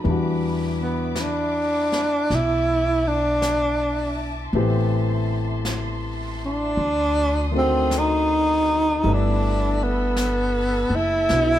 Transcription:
Already playing: B5
0.03 E2 E3 G3 B3 E5 D6, brush sweep
0.08 D4 F#4
0.82 B3
1.15 brush sweep, snare, hi-hat pedal
1.21 D4
1.92 snare
2.29 B1 A5, brush sweep, snare
2.35 E4
3.08 D4
3.42 brush sweep, snare, hi-hat pedal
4.53 A1 E3 A3 B3 C4 G4 C6, brush sweep
5.65 brush sweep, snare, hi-hat pedal
6.46 D4
6.77 D2 F#4 D5 D#6, brush sweep
7.51 D3 D#3 A3 C4
7.56 C4 F#4
7.91 brush sweep, snare, hi-hat pedal
7.98 D#4
9.02 G1 G3 A3 B3 A4 A5 B5 E6, brush sweep
9.07 D4 E4
9.14 D4
9.83 B3
10.16 brush sweep, snare, hi-hat pedal
10.90 F#1
10.96 E4
11.29 B1 B3 D4 E4 F#4, brush sweep, snare

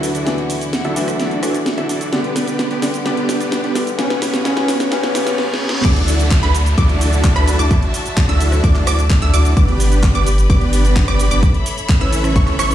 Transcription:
Already playing: D2 D3 E3 F#3 A3 D4 E4 F#4 A4 B4, riser
0.03 open hi-hat, shaker
0.15 D4 E4 F#4 A4 D5, closed hi-hat, shaker
0.25 E3 F#3 A3 D4, snare, closed hi-hat, shaker
0.38 closed hi-hat
0.50 open hi-hat, shaker
0.61 closed hi-hat, shaker
0.73 snare, closed hi-hat, shaker
0.85 D4 E4 F#4 A4 E5, closed hi-hat
0.96 E3 F#3 A3 D4, open hi-hat, shaker
1.08 cross-stick, closed hi-hat, shaker
1.20 D4 E4 F#4 A4 D5, snare, closed hi-hat, shaker
1.31 closed hi-hat
1.41 E3 F#3 A3 D4 E4 F#4 A4 D5, cross-stick, open hi-hat, shaker
1.54 closed hi-hat, shaker
1.66 snare, closed hi-hat, shaker
1.78 D4 E4 F#4 A4 E5, closed hi-hat
1.89 D4 E4 F#4 A4 D5, open hi-hat, shaker
2.01 closed hi-hat, shaker
2.11 G2 D3 G3 B3 D4 G4 B4 D5, snare, closed hi-hat, shaker
2.24 closed hi-hat
2.36 snare, open hi-hat, shaker
2.48 closed hi-hat, shaker
2.59 snare, closed hi-hat, shaker
2.71 B3 D4 G4 B4 D5, closed hi-hat
2.82 D3 G3 B3 D4, snare, open hi-hat, shaker
2.94 closed hi-hat, shaker
3.05 D3 G3 B3 D4 G4 B4 D5, snare, closed hi-hat, shaker
3.17 closed hi-hat
3.29 snare, open hi-hat, shaker
3.40 closed hi-hat, shaker
3.52 snare, closed hi-hat, shaker
3.64 B3 D4 G4 B4 D5, closed hi-hat
3.75 D3 G3 B3 D4, snare, open hi-hat, shaker
3.87 closed hi-hat, shaker
3.98 A2 C#3 E3 G3 B3 C#4 G4 B4 C#5, snare, closed hi-hat, shaker
4.10 snare, closed hi-hat
4.22 snare, open hi-hat, shaker
4.34 snare, closed hi-hat, shaker
4.44 C#3 G3 B3 C#4 G4 B4 C#5, snare, closed hi-hat, shaker
4.57 snare, closed hi-hat
4.68 snare, open hi-hat, shaker
4.80 snare, closed hi-hat, shaker
4.91 C#3 G3 B3 C#4 G4 B4 C#5, snare, closed hi-hat, reverse cymbal, shaker
5.03 snare, closed hi-hat
5.14 C#3 G3 B3 C#4 G4 B4 C#5, snare, open hi-hat, shaker
5.27 snare, closed hi-hat, shaker
5.38 B3 C#4 G4 B4 C#5, snare
5.54 snare
5.61 B3 C#4 G4 B4 C#5
5.69 snare
5.85 D2 D4 E4 F#4 A4 D5 E5 A5 D6, kick, closed hi-hat, crash, downlifter, shaker
5.96 closed hi-hat
6.08 open hi-hat, shaker
6.20 closed hi-hat, shaker
6.31 kick, clap, closed hi-hat, shaker
6.43 D2 D4 E4 F#4 A4 B4 B5, closed hi-hat
6.55 open hi-hat, shaker
6.66 closed hi-hat, shaker
6.78 D2 D4 E4 F#4 A4 D5 D6, kick, closed hi-hat, shaker
6.89 closed hi-hat
7.01 open hi-hat, shaker
7.13 closed hi-hat, shaker
7.24 kick, clap, closed hi-hat, shaker
7.36 D2 D4 E4 F#4 A4 B4 B5, cross-stick, closed hi-hat
7.48 open hi-hat, shaker
7.59 D2 D4 E4 F#4 A4 D5 D6, closed hi-hat, shaker
7.71 kick, closed hi-hat, shaker
7.82 closed hi-hat
7.94 open hi-hat, shaker
8.06 closed hi-hat, shaker
8.17 kick, clap, closed hi-hat, shaker
8.29 D2 D4 E4 F#4 A4 E5 E6, closed hi-hat
8.40 open hi-hat, shaker
8.52 cross-stick, closed hi-hat, shaker
8.64 D2 D4 E4 F#4 A4 D5 D6, kick, closed hi-hat, shaker
8.75 clap, closed hi-hat
8.87 D2 D4 E4 F#4 A4 D5 D6, cross-stick, open hi-hat, shaker
8.99 closed hi-hat, shaker
9.10 kick, clap, closed hi-hat, shaker
9.22 D2 D4 E4 F#4 A4 E5 E6, closed hi-hat
9.34 D2 D4 E4 F#4 A4 D5 D6, open hi-hat, shaker
9.45 closed hi-hat, shaker
9.57 G1 B3 D4 G4 B4 D5 B5 D6, kick, closed hi-hat, shaker
9.68 closed hi-hat
9.80 open hi-hat, shaker
9.92 closed hi-hat, shaker
10.03 kick, clap, closed hi-hat, shaker
10.15 G1 B3 D4 G4 B4 D5 D6, closed hi-hat
10.27 open hi-hat, shaker
10.38 closed hi-hat, shaker
10.50 G1 B3 D4 G4 B4 D5 D6, kick, closed hi-hat, shaker
10.61 closed hi-hat
10.73 open hi-hat, shaker
10.85 closed hi-hat, shaker
10.96 kick, clap, closed hi-hat, shaker
11.08 G1 B3 D4 G4 B4 D5 D6, cross-stick, closed hi-hat
11.19 open hi-hat, shaker
11.31 G1 B3 D4 G4 B4 D5 D6, closed hi-hat, shaker
11.43 A4 C#5 E5, kick, closed hi-hat, shaker
11.54 closed hi-hat
11.66 open hi-hat, shaker
11.78 closed hi-hat, shaker
11.89 kick, clap, closed hi-hat, shaker
12.01 A1 C#4 E4 A4 B4 E5 E6, closed hi-hat
12.13 open hi-hat, shaker
12.24 cross-stick, closed hi-hat, shaker
12.36 A1 C#4 E4 A4 B4 C#5 C#6, kick, closed hi-hat, shaker
12.47 clap, closed hi-hat
12.59 A1 C#4 E4 A4 B4 C#5 C#6, cross-stick, open hi-hat, shaker
12.71 closed hi-hat, shaker

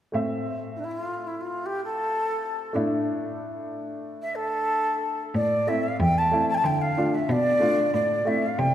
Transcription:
0.12 A2 A3 C4 E5
0.75 D4 E4
0.84 E4
0.91 F4
1.27 E4
1.40 F4
1.65 G4
1.84 A4
2.73 A2 A3 D4 E4
4.21 E5
4.35 A4
5.34 A2 D5
5.67 A3 C4 E4 E5
5.83 F5
6.00 E2 G5
6.18 A5
6.32 A3 C4 E4
6.49 A5
6.54 G5 A5
6.64 D3 G5
6.81 F5
6.97 A3 D4 F4
7.14 E5
7.29 B2 D5
7.60 A3 D4 F4
7.94 A2 D5
8.25 A3 C4 E4 E5
8.42 F5
8.58 C3 G5

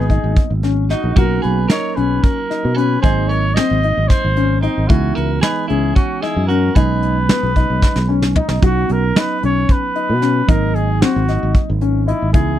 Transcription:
Already playing: G#1 F#3 A#3 B3 D#4 G#4
0.10 D#4, kick, closed hi-hat
0.24 G#1
0.37 kick, closed hi-hat
0.50 G#1
0.63 C#4, snare, closed hi-hat
0.90 D#4 F#4, snare, closed hi-hat
1.04 A#1
1.15 B1 F#3 A#3 C#4 D#4 F#4 A#4, kick, closed hi-hat
1.42 B1 G#4 B4, closed hi-hat
1.68 D#4 A#4 C#5, snare, closed hi-hat
1.95 B1 C#4 G#4 B4, closed hi-hat
2.22 F#4 A#4, kick, closed hi-hat
2.50 D#4, snare, closed hi-hat
2.65 B2
2.75 C#4 G#4 B4, closed hi-hat
3.01 G#1 F#3 A#3 C4 D#4 G#4 C5, kick, closed hi-hat
3.27 A#4 C#5, closed hi-hat
3.54 C4 C5 D#5, snare, closed hi-hat
3.71 G#1
3.83 D#4, closed hi-hat
3.97 G#1
4.08 G#4 C5, kick, snare, closed hi-hat
4.24 G#1
4.36 C#4, closed hi-hat
4.61 C4 D#4, closed hi-hat
4.77 G#1
4.87 C#2 E3 G#3 B3 C#4 D#4 E4 F#4, kick, closed hi-hat
5.15 C#2 F#4 A#4, closed hi-hat
5.41 D#4 G#4 B4, snare, closed hi-hat
5.68 C#2 C#4 E4 G#4, closed hi-hat
5.95 C#4 F#4, kick, closed hi-hat
6.21 D#4 E4 G#4, snare, closed hi-hat
6.36 F#2
6.47 C#4 F#4 A#4, closed hi-hat
6.74 B1 F#3 G#3 C#4 D#4 G#4 B4, kick, closed hi-hat
7.03 closed hi-hat
7.29 B3, snare, closed hi-hat
7.43 B1
7.56 D#4, kick, closed hi-hat
7.70 B1
7.82 kick, snare
7.96 B1, snare
8.09 C#4 G#5
8.22 snare
8.36 D#4 D#5, floor tom
8.49 B1, snare
8.61 B1 F#3 B3 C#4 D#4 F#4, kick, closed hi-hat
8.65 F#4
8.89 B1 A#4, closed hi-hat
9.16 D#4 B4, snare, closed hi-hat
9.43 B1 C#4 C#5, closed hi-hat
9.69 B4, kick, closed hi-hat
9.96 D#4, closed hi-hat
10.09 B2
10.22 C#4, snare, closed hi-hat
10.47 G#1 F#3 A#3 C4 D#4 A#4, kick, closed hi-hat
10.75 G#4, closed hi-hat
11.01 C4 F#4, snare, closed hi-hat
11.16 G#1
11.28 D#4, snare, closed hi-hat
11.43 G#1
11.55 kick, closed hi-hat
11.70 G#1
11.81 C#4, closed hi-hat
12.07 D#4 E4, closed hi-hat
12.22 G#1
12.33 C#2 E3 G#3 B3 D#4 E4 G#4, kick, closed hi-hat

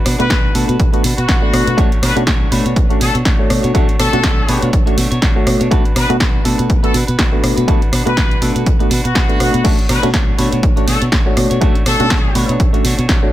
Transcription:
0.05 B2 D4 F#4 B4, cross-stick, open hi-hat
0.19 B2 A3 B3 D4 F#4 B4, closed hi-hat
0.29 B1 D4 F#4 B4, kick, snare, closed hi-hat
0.54 B2 A3 B3 D4 F#4 A4 B4, open hi-hat
0.68 B2 F#4 B4, closed hi-hat
0.80 B1, kick, closed hi-hat
0.93 A3 B3 D4 F#4 B4, closed hi-hat
1.03 B2 D4 F#4 B4, open hi-hat
1.17 B2 F#4 B4, closed hi-hat
1.28 B1 D4 F#4 B4, kick, snare, closed hi-hat
1.42 A3 B3 D4 F#4
1.53 B2, cross-stick, open hi-hat
1.66 B2 F#4 B4, closed hi-hat
1.77 B1 A3 C#4 D4 F#4 C#5, kick, closed hi-hat
1.92 closed hi-hat
2.01 B2 A3 D4 F#4 B4 C#5, cross-stick, open hi-hat
2.15 B2 A3 C#4 D4 F#4 C#5, closed hi-hat
2.26 B1 A3 D4 F#4 C#5, kick, snare, closed hi-hat
2.50 B2 A3 D4 F#4 B4 C#5, open hi-hat
2.65 B2 D4 F#4 C#5, closed hi-hat
2.76 B1, kick, closed hi-hat
2.89 A3 C#4 D4 F#4 C#5, closed hi-hat
3.00 B2 A3 D4 F#4 A4 C#5, open hi-hat
3.14 B2 D4 F#4 C#5, closed hi-hat
3.25 B1 A3 D4 F#4 C#5, kick, snare, closed hi-hat
3.39 A3 D4 F#4 C#5
3.50 B2, cross-stick, open hi-hat
3.63 B2 D4 F#4 C#5, closed hi-hat
3.74 B1 A3 C#4 D4 F#4 C#5, kick, closed hi-hat
3.89 muted fingered electric bass stroke, closed hi-hat
3.98 B2 A3 D4 F#4 A4 C#5, cross-stick, open hi-hat
4.12 B2 A3 C#4 D4 F#4 C#5, closed hi-hat
4.23 B1 A3 D4 F#4 C#5, kick, snare, closed hi-hat
4.48 B2 A3 D4 F#4 B4 C#5, open hi-hat
4.61 B2 D4 F#4 C#5, closed hi-hat
4.73 B1, kick, closed hi-hat
4.86 A3 C#4 D4 F#4 C#5, muted fingered electric bass stroke, closed hi-hat
4.97 B2 A3 D4 F#4 C#5, open hi-hat
5.11 B2 D4 F#4 C#5, closed hi-hat
5.21 B1 A3 D4 F#4 C#5, kick, snare, closed hi-hat
5.36 A3 D4 F#4 C#5
5.47 B2, cross-stick, open hi-hat
5.60 B2 D4 F#4 C#5, closed hi-hat
5.71 B1 A3 B3 D4 F#4 B4, kick, closed hi-hat
5.85 closed hi-hat
5.95 B2 D4 F#4 B4, cross-stick, open hi-hat
6.09 B2 A3 B3 D4 F#4 B4, closed hi-hat
6.20 B1 D4 F#4 B4, kick, snare, closed hi-hat
6.44 B2 A3 B3 D4 F#4 A4 B4, open hi-hat
6.58 B2 F#4 B4, closed hi-hat
6.70 B1, kick, closed hi-hat
6.83 A3 B3 D4 F#4 A4 B4, closed hi-hat
6.93 B2 D4 F#4 B4, open hi-hat
7.07 B2 F#4 B4, closed hi-hat
7.18 B1 D4 F#4 B4, kick, snare, closed hi-hat
7.32 A3 B3 D4 F#4
7.43 B2, cross-stick, open hi-hat
7.56 B2 F#4 B4, closed hi-hat
7.68 B1 A3 B3 D4 F#4 B4, kick, closed hi-hat
7.82 closed hi-hat
7.92 B2 D4 F#4 B4, cross-stick, open hi-hat
8.05 B2 A3 B3 D4 F#4 B4, closed hi-hat
8.17 B1 D4 F#4 B4, kick, snare, closed hi-hat
8.31 closed hi-hat
8.41 B2 A3 B3 D4 F#4 A4 B4, open hi-hat
8.55 B2 F#4 B4, closed hi-hat
8.66 B1, kick, closed hi-hat
8.79 A3 B3 D4 F#4 B4, closed hi-hat
8.90 B2 D4 F#4 B4, open hi-hat
9.04 B2 F#4 B4, closed hi-hat
9.15 B1 D4 F#4 B4, kick, snare, closed hi-hat
9.29 A3 B3 D4 F#4, closed hi-hat
9.40 B2, cross-stick, open hi-hat
9.53 B2 F#4 B4, closed hi-hat
9.64 B1 A3 C#4 D4 F#4 C#5, kick, closed hi-hat, crash
9.79 closed hi-hat
9.88 B2 A3 D4 F#4 B4 C#5, cross-stick, open hi-hat
10.02 B2 A3 C#4 D4 F#4 C#5, closed hi-hat
10.13 B1 A3 D4 F#4 C#5, kick, snare, closed hi-hat
10.37 B2 A3 D4 F#4 B4 C#5, open hi-hat
10.51 B2 D4 F#4 C#5, closed hi-hat
10.63 B1, kick, closed hi-hat
10.76 A3 C#4 D4 F#4 C#5, closed hi-hat
10.87 B2 A3 D4 F#4 A4 C#5, open hi-hat
11.01 B2 D4 F#4 C#5, closed hi-hat
11.12 B1 A3 D4 F#4 C#5, kick, snare, closed hi-hat
11.26 A3 D4 F#4 C#5
11.37 B2, cross-stick, open hi-hat
11.50 B2 D4 F#4 C#5, closed hi-hat
11.61 B1 A3 C#4 D4 F#4 C#5, kick, closed hi-hat
11.75 closed hi-hat
11.85 B2 A3 D4 F#4 A4 C#5, cross-stick, open hi-hat
11.99 B2 A3 C#4 D4 F#4 C#5, closed hi-hat
12.10 B1 A3 D4 F#4 C#5, kick, snare, closed hi-hat
12.34 B2 A3 D4 F#4 B4 C#5, open hi-hat
12.48 B2 D4 F#4 C#5, closed hi-hat
12.60 B1, kick, closed hi-hat
12.73 A3 C#4 D4 F#4 C#5, muted fingered electric bass stroke, closed hi-hat
12.83 B2 A3 D4 F#4 C#5, open hi-hat
12.98 B2 D4 F#4 C#5, closed hi-hat
13.08 B1 A3 D4 F#4 C#5, kick, snare, closed hi-hat
13.22 A3 D4 F#4 C#5

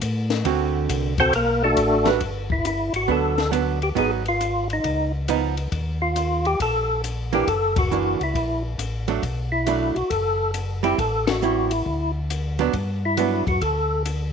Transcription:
0.01 A2, kick, hi-hat pedal, ride
0.30 snare, ride
0.45 D2 D3 A3 C4 F#4, kick, ride
0.89 C2, kick, hi-hat pedal, ride
1.18 C4 F#4 A4 C5, kick, ride
1.33 B1 A#3 A#4, kick, ride
1.64 A3 D4 F#4 A4
1.77 A1, kick, hi-hat pedal, ride
2.05 G3 D4 F#4 B4, snare, ride
2.20 G1, kick, ride
2.50 E4, kick
2.65 E4, hi-hat pedal, ride
2.93 G#1 F#4, ride
3.08 D2 F#3 B3 D4 A4, kick
3.38 snare, ride
3.51 F#3 B3 D4, hi-hat pedal, ride
3.82 G4, ride
3.95 G#1 F#3 B3 D#4 G#4, kick, ride
4.26 F4, ride
4.41 hi-hat pedal, ride
4.70 D#4, ride
4.84 C#2, kick, ride
5.28 F3 B3 D#4, hi-hat pedal, ride
5.57 ride
5.72 D#2, kick, ride
6.02 F4
6.16 hi-hat pedal, ride
6.45 G4, ride
6.60 A#1 A4, kick, ride
7.04 hi-hat pedal, ride
7.33 E3 A#3 D4 G4, ride
7.47 F#1 A4, kick, ride
7.76 F#4, kick, ride
7.91 E3 A#3 D4, hi-hat pedal
8.20 C#2 E4, ride
8.34 A#1, kick, ride
8.78 A1, hi-hat pedal, ride
9.08 F#3 A3 D4, ride
9.22 B1, kick, ride
9.52 E4
9.67 F#3 A3 D4, hi-hat pedal, ride
9.95 B1 F#4, ride
10.10 F#1 A4, kick, ride
10.54 hi-hat pedal, ride
10.83 G3 C4 E4 G4, ride
10.98 A1 A4, kick, ride
11.27 F#4, snare, ride
11.42 G3 C4 E4, hi-hat pedal
11.70 E4, ride
11.86 D2, kick
12.30 hi-hat pedal, ride
12.59 F#3 B3 D4, ride
12.73 G2, kick, ride
13.05 E4
13.17 F#3 B3 D4, hi-hat pedal, ride
13.46 F#2 F#4, kick, ride
13.61 D2 A4, kick, ride
14.05 hi-hat pedal, ride

